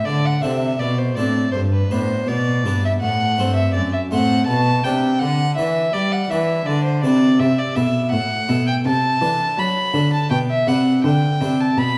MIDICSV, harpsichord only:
0, 0, Header, 1, 2, 480
1, 0, Start_track
1, 0, Key_signature, 1, "major"
1, 0, Tempo, 738007
1, 1001, Time_signature, 4, 2, 24, 8
1, 2918, Tempo, 729040
1, 7851, End_track
2, 0, Start_track
2, 0, Title_t, "Harpsichord"
2, 0, Program_c, 0, 6
2, 44, Note_on_c, 0, 50, 40
2, 258, Note_off_c, 0, 50, 0
2, 279, Note_on_c, 0, 60, 33
2, 280, Note_on_c, 0, 48, 39
2, 281, Note_on_c, 0, 62, 31
2, 286, Note_on_c, 0, 69, 34
2, 452, Note_off_c, 0, 60, 0
2, 496, Note_off_c, 0, 48, 0
2, 522, Note_on_c, 0, 47, 45
2, 626, Note_off_c, 0, 62, 0
2, 630, Note_off_c, 0, 69, 0
2, 737, Note_off_c, 0, 47, 0
2, 760, Note_on_c, 0, 60, 32
2, 761, Note_on_c, 0, 45, 44
2, 764, Note_on_c, 0, 69, 35
2, 765, Note_on_c, 0, 62, 31
2, 933, Note_off_c, 0, 60, 0
2, 936, Note_off_c, 0, 62, 0
2, 936, Note_off_c, 0, 69, 0
2, 977, Note_off_c, 0, 45, 0
2, 1005, Note_on_c, 0, 43, 43
2, 1220, Note_off_c, 0, 43, 0
2, 1244, Note_on_c, 0, 45, 41
2, 1244, Note_on_c, 0, 59, 31
2, 1244, Note_on_c, 0, 62, 31
2, 1247, Note_on_c, 0, 71, 35
2, 1459, Note_off_c, 0, 45, 0
2, 1475, Note_on_c, 0, 47, 45
2, 1589, Note_off_c, 0, 59, 0
2, 1589, Note_off_c, 0, 62, 0
2, 1591, Note_off_c, 0, 71, 0
2, 1695, Note_off_c, 0, 47, 0
2, 1727, Note_on_c, 0, 43, 40
2, 1728, Note_on_c, 0, 59, 31
2, 1728, Note_on_c, 0, 62, 33
2, 1732, Note_on_c, 0, 71, 33
2, 1899, Note_off_c, 0, 59, 0
2, 1899, Note_off_c, 0, 62, 0
2, 1902, Note_off_c, 0, 71, 0
2, 1941, Note_off_c, 0, 43, 0
2, 1966, Note_on_c, 0, 45, 46
2, 2180, Note_off_c, 0, 45, 0
2, 2199, Note_on_c, 0, 57, 34
2, 2201, Note_on_c, 0, 43, 44
2, 2204, Note_on_c, 0, 60, 35
2, 2206, Note_on_c, 0, 72, 39
2, 2416, Note_off_c, 0, 43, 0
2, 2436, Note_on_c, 0, 42, 47
2, 2544, Note_off_c, 0, 57, 0
2, 2547, Note_off_c, 0, 60, 0
2, 2548, Note_off_c, 0, 72, 0
2, 2653, Note_off_c, 0, 42, 0
2, 2674, Note_on_c, 0, 45, 44
2, 2678, Note_on_c, 0, 57, 35
2, 2679, Note_on_c, 0, 60, 35
2, 2680, Note_on_c, 0, 72, 36
2, 2850, Note_off_c, 0, 57, 0
2, 2850, Note_off_c, 0, 60, 0
2, 2851, Note_off_c, 0, 72, 0
2, 2890, Note_off_c, 0, 45, 0
2, 2914, Note_on_c, 0, 47, 45
2, 3132, Note_off_c, 0, 47, 0
2, 3154, Note_on_c, 0, 48, 46
2, 3156, Note_on_c, 0, 62, 36
2, 3158, Note_on_c, 0, 71, 35
2, 3373, Note_off_c, 0, 48, 0
2, 3396, Note_on_c, 0, 50, 42
2, 3503, Note_off_c, 0, 62, 0
2, 3504, Note_off_c, 0, 71, 0
2, 3614, Note_off_c, 0, 50, 0
2, 3636, Note_on_c, 0, 62, 37
2, 3637, Note_on_c, 0, 52, 46
2, 3643, Note_on_c, 0, 71, 35
2, 3809, Note_off_c, 0, 62, 0
2, 3814, Note_off_c, 0, 71, 0
2, 3854, Note_off_c, 0, 52, 0
2, 3877, Note_on_c, 0, 55, 45
2, 4092, Note_off_c, 0, 55, 0
2, 4120, Note_on_c, 0, 52, 43
2, 4121, Note_on_c, 0, 62, 35
2, 4123, Note_on_c, 0, 71, 37
2, 4333, Note_off_c, 0, 52, 0
2, 4362, Note_on_c, 0, 50, 47
2, 4463, Note_off_c, 0, 62, 0
2, 4464, Note_off_c, 0, 71, 0
2, 4574, Note_off_c, 0, 50, 0
2, 4597, Note_on_c, 0, 48, 46
2, 4600, Note_on_c, 0, 62, 34
2, 4602, Note_on_c, 0, 71, 40
2, 4770, Note_off_c, 0, 62, 0
2, 4771, Note_off_c, 0, 71, 0
2, 4811, Note_off_c, 0, 48, 0
2, 4836, Note_on_c, 0, 48, 46
2, 5050, Note_off_c, 0, 48, 0
2, 5069, Note_on_c, 0, 47, 47
2, 5075, Note_on_c, 0, 64, 36
2, 5077, Note_on_c, 0, 69, 37
2, 5287, Note_off_c, 0, 47, 0
2, 5316, Note_on_c, 0, 45, 49
2, 5420, Note_off_c, 0, 64, 0
2, 5421, Note_off_c, 0, 69, 0
2, 5531, Note_off_c, 0, 45, 0
2, 5549, Note_on_c, 0, 47, 43
2, 5552, Note_on_c, 0, 64, 34
2, 5555, Note_on_c, 0, 69, 33
2, 5725, Note_off_c, 0, 64, 0
2, 5726, Note_off_c, 0, 69, 0
2, 5766, Note_off_c, 0, 47, 0
2, 5793, Note_on_c, 0, 48, 46
2, 6008, Note_off_c, 0, 48, 0
2, 6029, Note_on_c, 0, 52, 42
2, 6034, Note_on_c, 0, 62, 37
2, 6035, Note_on_c, 0, 69, 41
2, 6245, Note_off_c, 0, 52, 0
2, 6275, Note_on_c, 0, 54, 47
2, 6377, Note_off_c, 0, 62, 0
2, 6378, Note_off_c, 0, 69, 0
2, 6488, Note_off_c, 0, 54, 0
2, 6503, Note_on_c, 0, 50, 47
2, 6511, Note_on_c, 0, 62, 38
2, 6512, Note_on_c, 0, 69, 38
2, 6683, Note_off_c, 0, 62, 0
2, 6684, Note_off_c, 0, 69, 0
2, 6722, Note_off_c, 0, 50, 0
2, 6747, Note_on_c, 0, 47, 45
2, 6965, Note_off_c, 0, 47, 0
2, 6990, Note_on_c, 0, 48, 43
2, 6995, Note_on_c, 0, 62, 34
2, 7000, Note_on_c, 0, 71, 38
2, 7208, Note_off_c, 0, 48, 0
2, 7238, Note_on_c, 0, 50, 49
2, 7342, Note_off_c, 0, 62, 0
2, 7345, Note_off_c, 0, 71, 0
2, 7453, Note_off_c, 0, 50, 0
2, 7476, Note_on_c, 0, 48, 38
2, 7479, Note_on_c, 0, 62, 34
2, 7483, Note_on_c, 0, 71, 33
2, 7651, Note_off_c, 0, 62, 0
2, 7653, Note_off_c, 0, 71, 0
2, 7692, Note_off_c, 0, 48, 0
2, 7717, Note_on_c, 0, 47, 45
2, 7851, Note_off_c, 0, 47, 0
2, 7851, End_track
0, 0, End_of_file